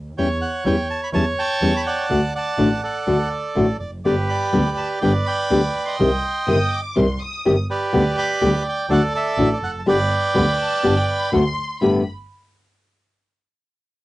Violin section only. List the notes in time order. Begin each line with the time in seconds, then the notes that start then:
6.48 D#6
6.72 D6
6.97 C6
7.21 D#6
10.34 B5
10.58 A5
10.96 G5
11.09 B5
11.33 C6
11.82 B5